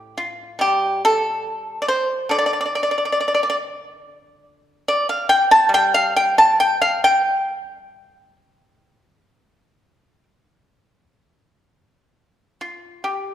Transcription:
0.00 1.46 A2 medium
0.00 0.14 G4 medium
0.18 0.58 F4 medium
0.59 2.29 G3 medium
0.59 1.01 G4 loud
1.05 1.78 A4 loud
1.82 1.88 D5 medium
1.88 2.28 C5 medium
2.29 4.84 D3 medium
2.29 2.37 D5 loud
2.39 2.45 D5 medium
2.46 2.52 D5 medium
2.53 2.59 D5 medium
2.61 2.64 D5 medium
2.66 2.73 D5 medium
2.75 2.81 D5 medium
2.83 2.89 D5 medium
2.91 2.96 D5 medium
2.98 3.03 D5 medium
3.05 3.10 D5 medium
3.12 3.18 D5 medium
3.21 3.25 D5 medium
3.28 3.33 D5 medium
3.35 3.39 D5 medium
3.43 3.47 D5 medium
3.50 3.54 D5 medium
4.88 5.07 D5 medium
5.09 5.28 F5 medium
5.29 5.48 G5 loud
5.51 5.70 A5 loud
5.69 8.36 G3 medium
5.74 5.93 G5 loud
5.94 6.14 F5 loud
6.16 6.36 G5 loud
6.38 6.58 A5 loud
6.60 6.81 G5 loud
6.82 7.02 F5 loud
7.04 10.23 G5 loud
12.61 13.01 F4 medium
13.04 13.34 G4 medium

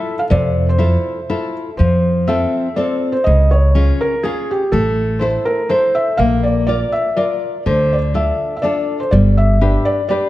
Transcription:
0.00 0.21 E4 soft
0.00 0.21 F4 soft
0.00 0.21 A4 medium
0.00 0.14 E5 medium
0.19 0.24 F5 medium
0.30 0.95 F2 loud
0.30 0.78 C3 medium
0.30 0.66 D5 medium
0.69 0.79 C5 medium
0.78 1.19 E4 soft
0.78 1.19 F4 soft
0.78 1.19 A4 soft
0.78 1.52 C5 medium
1.30 1.69 E4 soft
1.30 1.69 F4 soft
1.30 1.69 A4 soft
1.77 2.44 F2 medium
1.77 2.27 F3 medium
1.77 2.29 C5 medium
2.27 2.67 C4 soft
2.27 2.68 F4 soft
2.27 2.68 A4 medium
2.27 2.74 E5 medium
2.76 3.16 C4 soft
2.76 3.16 F4 soft
2.76 3.17 A4 medium
2.76 3.12 D5 medium
3.12 3.24 C5 medium
3.24 3.90 C#2 medium
3.24 3.74 C#3 medium
3.24 3.49 D#5 medium
3.51 4.02 C#5 medium
3.75 4.14 C#4 soft
3.75 4.14 F4 soft
3.75 4.14 G#4 soft
4.01 4.22 A#4 medium
4.23 4.63 C#4 soft
4.23 4.63 F4 soft
4.23 4.50 G#4 medium
4.23 4.63 G#4 medium
4.51 4.71 G4 medium
4.72 5.36 A1 medium
4.72 5.20 A3 medium
4.72 5.17 A4 medium
5.19 5.60 E4 medium
5.19 5.60 A4 soft
5.19 5.25 C5 medium
5.19 5.61 C5 medium
5.45 5.70 A#4 medium
5.69 6.09 E4 soft
5.69 6.09 A4 soft
5.69 5.94 C5 medium
5.69 6.09 C5 medium
5.95 6.19 E5 medium
6.17 6.82 A#1 medium
6.17 6.66 A#3 medium
6.17 6.42 F5 medium
6.43 6.65 D5 medium
6.67 7.07 F4 soft
6.67 7.07 A#4 soft
6.67 6.91 D5 medium
6.67 7.08 D5 medium
6.92 7.17 E5 medium
7.17 7.56 F4 soft
7.17 7.56 A#4 soft
7.17 7.62 D5 medium
7.17 7.56 D5 soft
7.66 8.30 D2 medium
7.66 8.13 D3 medium
7.66 7.93 C5 medium
7.93 7.98 D5 medium
8.14 8.54 D4 soft
8.14 8.54 F4 soft
8.14 8.54 A4 soft
8.14 8.54 E5 medium
8.57 8.63 E5 medium
8.62 9.02 D4 soft
8.62 9.03 F4 soft
8.62 9.03 A4 soft
8.62 8.97 D5 medium
9.00 9.11 C5 medium
9.11 9.76 G1 loud
9.11 9.60 G3 medium
9.11 9.36 D5 medium
9.37 9.88 E5 medium
9.61 10.00 D4 medium
9.61 10.00 G4 soft
9.61 10.00 B4 soft
9.85 10.07 D5 medium
10.09 10.29 D4 soft
10.09 10.29 G4 soft
10.09 10.29 B4 soft
10.09 10.29 D5 medium

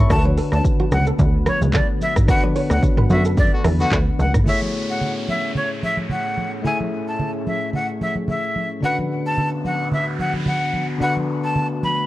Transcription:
0.00 4.43 A3 medium
0.00 0.12 C#5 medium
0.00 0.24 E5 medium
0.00 0.13 A5 medium
0.00 0.12 B5 medium
0.00 0.24 C#6 medium
0.08 0.40 D2 loud
0.08 2.23 D3 medium
0.08 4.43 D3 medium
0.08 4.43 B3 medium
0.08 2.24 D4 medium
0.08 4.43 F#4 medium
0.08 2.25 F#4 medium
0.08 0.24 A5 loud
0.08 kick loud
0.08 cross-stick loud
0.08 low conga medium
0.08 shaker medium
0.13 0.19 A#4 medium
0.19 2.29 B4 medium
0.25 0.35 C#5 medium
0.25 high conga medium
0.38 0.49 A4 medium
0.38 open hi-hat medium
0.38 shaker medium
0.52 0.61 D2 loud
0.52 0.63 A5 medium
0.52 cross-stick medium
0.52 shaker medium
0.65 kick loud
0.65 shaker medium
0.80 0.89 F#4 medium
0.80 high conga medium
0.92 1.11 C#2 loud
0.92 1.05 F#5 medium
0.92 cross-stick medium
0.92 high conga medium
0.92 shaker medium
1.07 1.17 A4 medium
1.07 shaker medium
1.19 1.49 D2 loud
1.19 kick loud
1.19 low conga medium
1.19 shaker medium
1.46 1.58 B4 medium
1.46 1.60 C#5 medium
1.46 cross-stick loud
1.46 high conga medium
1.46 shaker medium
1.61 1.81 C#2 medium
1.61 high conga medium
1.61 shaker medium
1.73 1.95 A4 medium
1.73 1.87 D5 medium
1.73 kick loud
1.73 clap loud
1.73 high conga medium
1.73 low conga medium
1.73 shaker medium
2.01 2.14 E5 medium
2.01 high conga medium
2.01 shaker medium
2.16 kick loud
2.16 cross-stick loud
2.16 mid tom loud
2.16 shaker medium
2.26 4.41 D3 medium
2.26 4.42 D4 medium
2.26 4.43 F#4 medium
2.26 2.42 F#5 loud
2.26 kick loud
2.26 cross-stick loud
2.26 low conga medium
2.26 shaker medium
2.31 4.44 B4 medium
2.43 2.53 D5 medium
2.43 high conga medium
2.56 2.67 C#5 medium
2.56 open hi-hat medium
2.56 shaker medium
2.70 2.79 D2 loud
2.70 2.82 F#5 medium
2.70 cross-stick medium
2.70 shaker medium
2.83 kick loud
2.83 low conga medium
2.83 shaker medium
2.97 3.08 B4 medium
2.97 mid tom medium
2.97 high conga medium
3.10 3.48 F#2 medium
3.10 3.23 D3 medium
3.10 3.23 B3 medium
3.10 3.23 F#4 medium
3.10 3.23 E5 medium
3.10 high conga medium
3.10 shaker medium
3.25 3.35 A4 medium
3.25 shaker medium
3.37 3.51 D5 loud
3.37 kick loud
3.37 low conga medium
3.37 shaker medium
3.52 3.63 D3 medium
3.52 3.63 B3 medium
3.52 3.63 F#4 loud
3.64 3.84 E2 medium
3.64 3.76 A4 medium
3.64 cross-stick loud
3.64 open hi-hat medium
3.64 high conga medium
3.64 shaker medium
3.79 3.97 D3 loud
3.79 3.97 B3 loud
3.79 3.97 F#4 loud
3.79 3.91 F#5 medium
3.79 high conga medium
3.79 shaker medium
3.91 4.11 D2 loud
3.91 4.13 B4 medium
3.91 kick loud
3.91 clap loud
3.91 high conga medium
3.91 low conga medium
3.91 shaker medium
4.19 4.38 C#2 loud
4.19 4.33 F#5 medium
4.19 high conga medium
4.19 shaker medium
4.34 kick loud
4.34 cross-stick medium
4.34 mid tom loud
4.34 shaker medium
4.44 8.79 A2 medium
4.44 6.59 A3 medium
4.44 8.79 A3 medium
4.44 8.79 C#4 medium
4.44 6.60 E4 medium
4.44 8.79 G#4 medium
4.44 6.61 G#4 medium
4.44 4.60 E5 medium
4.44 downlifter medium
4.44 low conga medium
4.49 6.62 C#5 medium
4.62 high conga medium
4.90 5.13 F#5 medium
5.01 low conga medium
5.28 5.52 E5 medium
5.28 high conga medium
5.55 5.69 C#5 medium
5.55 low conga medium
5.83 5.96 E5 medium
5.83 high conga medium
5.97 high conga medium
6.09 6.50 F#5 medium
6.09 high conga medium
6.09 low conga medium
6.37 high conga medium
6.62 8.78 A3 medium
6.62 8.79 E4 medium
6.62 8.79 G#4 medium
6.62 6.78 G#5 medium
6.62 low conga medium
6.67 8.80 E5 medium
6.80 high conga medium
7.08 7.31 A5 medium
7.19 low conga medium
7.47 7.70 E5 medium
7.47 high conga medium
7.73 7.87 F#5 medium
7.73 low conga medium
8.01 8.14 E5 medium
8.01 high conga medium
8.15 high conga medium
8.28 8.69 E5 medium
8.28 high conga medium
8.28 low conga medium
8.56 high conga medium
8.80 12.06 D2 medium
8.80 10.96 D3 medium
8.80 12.06 D3 medium
8.80 10.99 B3 medium
8.80 10.97 D4 medium
8.80 12.06 F#4 medium
8.80 10.98 F#4 medium
8.80 8.96 F#5 loud
8.80 noise sweep medium
8.80 low conga medium
8.86 10.98 B4 medium
8.99 high conga medium
9.26 9.49 A5 medium
9.37 low conga medium
9.65 9.89 F#5 medium
9.65 high conga medium
9.91 10.05 E5 medium
9.91 low conga medium
10.19 10.33 F#5 medium
10.19 high conga medium
10.34 high conga medium
10.46 10.87 F#5 medium
10.46 high conga medium
10.46 low conga medium
10.74 high conga medium
10.99 12.06 D3 medium
10.99 12.06 A3 medium
10.99 12.06 D4 medium
10.99 12.06 F#4 medium
10.99 11.14 F#5 loud
10.99 low conga medium
11.04 12.06 B4 medium
11.17 high conga medium
11.44 11.67 A5 medium
11.56 low conga medium
11.83 12.06 B5 medium
11.83 high conga medium

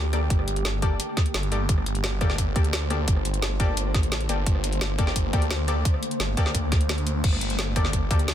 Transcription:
0.00 0.29 D2 loud
0.00 8.34 D3 medium
0.00 8.34 A3 medium
0.00 8.34 A#3 medium
0.00 1.67 G4 loud
0.13 0.20 A#3 medium
0.13 0.20 G4 medium
0.13 0.20 A4 medium
0.13 0.20 D5 loud
0.13 cross-stick soft
0.13 closed hi-hat medium
0.30 0.46 G1 loud
0.30 kick loud
0.30 closed hi-hat medium
0.39 cross-stick soft
0.48 0.98 G1 loud
0.48 closed hi-hat medium
0.56 closed hi-hat soft
0.65 snare loud
0.65 closed hi-hat medium
0.82 0.94 A#3 medium
0.82 0.94 G4 medium
0.82 0.94 A4 medium
0.82 0.94 D5 loud
0.82 kick loud
0.82 closed hi-hat medium
1.00 closed hi-hat medium
1.17 kick loud
1.17 snare soft
1.17 closed hi-hat medium
1.26 closed hi-hat soft
1.34 1.50 G1 loud
1.34 snare loud
1.34 closed hi-hat medium
1.43 closed hi-hat soft
1.52 1.68 G1 loud
1.52 1.59 A#3 medium
1.52 1.59 G4 medium
1.52 1.59 A4 medium
1.52 1.59 D5 loud
1.52 closed hi-hat medium
1.69 2.54 G1 loud
1.69 7.22 C5 loud
1.69 kick loud
1.69 closed hi-hat medium
1.78 cross-stick soft
1.86 closed hi-hat medium
1.95 closed hi-hat soft
2.04 snare loud
2.04 closed hi-hat medium
2.21 2.33 A#3 medium
2.21 2.33 G4 medium
2.21 2.33 A4 medium
2.21 2.33 D5 loud
2.21 kick loud
2.21 cross-stick medium
2.21 closed hi-hat medium
2.30 snare soft
2.38 kick medium
2.38 closed hi-hat medium
2.56 3.06 D2 loud
2.56 2.68 A#3 medium
2.56 2.68 G4 medium
2.56 2.68 A4 medium
2.56 2.68 D5 medium
2.56 kick loud
2.56 closed hi-hat medium
2.64 closed hi-hat soft
2.73 snare loud
2.73 closed hi-hat medium
2.90 2.98 A#3 medium
2.90 2.98 G4 medium
2.90 2.98 A4 medium
2.90 2.98 D5 loud
2.90 cross-stick soft
2.90 closed hi-hat medium
3.08 3.93 G1 loud
3.08 kick loud
3.08 closed hi-hat medium
3.16 cross-stick soft
3.25 closed hi-hat medium
3.34 closed hi-hat soft
3.42 snare loud
3.42 closed hi-hat medium
3.60 3.72 A#3 medium
3.60 3.72 G4 medium
3.60 3.72 A4 medium
3.60 3.72 D5 loud
3.60 kick loud
3.60 closed hi-hat medium
3.77 closed hi-hat medium
3.94 4.28 A1 loud
3.94 kick loud
3.94 snare soft
3.94 closed hi-hat medium
4.03 closed hi-hat soft
4.12 snare loud
4.12 closed hi-hat medium
4.21 closed hi-hat soft
4.29 4.45 G1 loud
4.29 4.37 A#3 medium
4.29 4.37 G4 medium
4.29 4.37 A4 medium
4.29 4.37 D5 loud
4.29 closed hi-hat medium
4.46 5.32 G1 loud
4.46 kick loud
4.46 closed hi-hat loud
4.55 cross-stick soft
4.64 closed hi-hat medium
4.72 closed hi-hat soft
4.81 snare loud
4.81 closed hi-hat loud
4.99 5.10 A#3 loud
4.99 5.10 G4 medium
4.99 5.10 A4 medium
4.99 5.10 D5 loud
4.99 kick loud
4.99 closed hi-hat medium
5.07 snare soft
5.16 kick medium
5.16 closed hi-hat loud
5.33 5.84 D2 loud
5.33 5.45 A#3 medium
5.33 5.45 G4 medium
5.33 5.45 A4 medium
5.33 5.45 D5 medium
5.33 kick loud
5.33 closed hi-hat medium
5.42 closed hi-hat soft
5.51 snare loud
5.51 closed hi-hat loud
5.68 5.75 A#3 medium
5.68 5.75 G4 medium
5.68 5.75 A4 medium
5.68 5.75 D5 loud
5.68 cross-stick soft
5.68 closed hi-hat medium
5.85 kick loud
5.85 closed hi-hat loud
5.94 cross-stick soft
6.03 closed hi-hat medium
6.11 closed hi-hat soft
6.20 6.36 G1 loud
6.20 snare loud
6.20 closed hi-hat loud
6.37 6.49 A#3 loud
6.37 6.49 G4 medium
6.37 6.49 A4 medium
6.37 6.49 D5 loud
6.37 kick loud
6.37 cross-stick medium
6.37 closed hi-hat medium
6.46 snare soft
6.55 7.23 D2 loud
6.55 kick medium
6.55 closed hi-hat loud
6.72 kick loud
6.72 snare soft
6.72 closed hi-hat medium
6.81 closed hi-hat soft
6.89 snare loud
6.89 closed hi-hat loud
6.98 closed hi-hat soft
7.07 closed hi-hat medium
7.24 8.09 G1 loud
7.24 8.34 G4 loud
7.24 kick loud
7.24 closed hi-hat loud
7.24 crash medium
7.33 cross-stick soft
7.41 closed hi-hat medium
7.50 closed hi-hat soft
7.59 snare loud
7.59 closed hi-hat loud
7.76 7.88 A#3 loud
7.76 7.88 G4 medium
7.76 7.88 A4 medium
7.76 7.88 D5 loud
7.76 kick loud
7.76 cross-stick medium
7.76 closed hi-hat medium
7.85 snare soft
7.93 kick medium
7.93 closed hi-hat loud
8.11 8.34 D2 loud
8.11 8.23 A#3 medium
8.11 8.23 G4 medium
8.11 8.23 A4 medium
8.11 8.23 D5 medium
8.11 kick loud
8.11 closed hi-hat medium
8.19 closed hi-hat soft
8.28 snare loud
8.28 closed hi-hat loud

